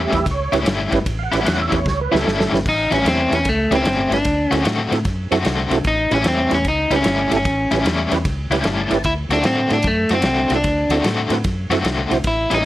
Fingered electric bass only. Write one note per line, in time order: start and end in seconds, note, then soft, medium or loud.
0.12 0.23 E2 loud
0.26 0.47 C#2 loud
0.53 0.64 C#2 loud
0.66 0.87 G1 loud
0.92 1.03 G1 medium
1.06 1.27 A1 medium
1.33 1.44 A1 medium
1.47 1.68 E2 loud
1.72 1.83 E2 loud
1.86 2.07 C#2 loud
2.13 2.24 C#2 loud
2.26 2.47 G1 medium
2.52 2.63 G1 medium
2.65 2.86 A1 medium
2.92 3.03 A1 medium
3.05 3.26 E2 medium
3.32 3.43 E2 medium
3.45 3.66 C#2 loud
3.71 3.82 C#2 medium
3.84 4.06 G1 medium
4.10 4.22 G1 medium
4.25 4.46 D2 medium
4.52 4.63 D2 medium
4.66 4.87 A2 medium
4.92 5.03 A2 medium
5.05 5.26 F#2 medium
5.31 5.43 F#2 medium
5.45 5.66 C2 loud
5.71 5.82 C2 medium
5.85 6.06 A1 medium
6.11 6.22 A1 loud
6.25 6.46 E2 medium
6.52 6.63 E2 medium
6.65 6.86 C#2 medium
6.90 7.02 C#2 medium
7.05 7.26 G1 medium
7.32 7.43 G1 medium
7.45 7.66 A1 medium
7.72 7.83 A1 medium
7.85 8.06 E2 medium
8.12 8.23 E2 medium
8.25 8.46 C#2 loud
8.50 8.62 C#2 medium
8.65 8.86 G1 medium
8.90 9.02 G1 medium
9.05 9.26 D2 medium
9.29 9.41 D2 medium
9.44 9.66 A2 medium
9.71 9.82 A2 medium
9.84 10.05 F#2 medium
10.10 10.22 F#2 medium
10.23 10.45 C2 medium
10.50 10.62 C2 medium
10.64 10.86 D2 medium
10.89 11.01 D2 medium
11.04 11.25 A2 medium
11.30 11.42 A2 medium
11.45 11.66 F#2 medium
11.70 11.81 F#2 medium
11.84 12.06 C2 medium
12.11 12.22 C2 medium
12.24 12.46 A1 medium
12.51 12.63 A1 medium